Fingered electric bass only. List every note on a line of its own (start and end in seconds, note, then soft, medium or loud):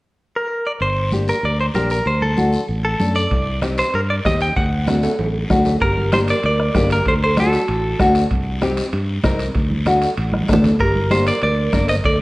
0.80 1.31 G1 medium
1.43 1.68 D2 medium
1.75 2.00 A#1 medium
2.06 2.56 D2 loud
2.69 2.94 A1 medium
3.00 3.25 F#2 medium
3.31 3.81 C2 medium
3.94 4.19 G2 medium
4.25 4.50 D#2 medium
4.57 5.07 D2 loud
5.19 5.44 A1 medium
5.50 5.75 D2 medium
5.81 6.31 G1 medium
6.44 6.69 D2 medium
6.75 7.00 G1 medium
7.06 7.56 D2 medium
7.68 7.93 A1 loud
8.00 8.25 D2 loud
8.31 8.81 C2 loud
8.93 9.18 G2 loud
9.24 9.49 C2 loud
9.55 10.05 D2 medium
10.17 10.42 A1 loud
10.49 10.74 D2 loud
10.80 11.30 G1 medium
11.43 11.67 D2 loud
11.73 11.98 G1 loud
12.04 12.22 D2 medium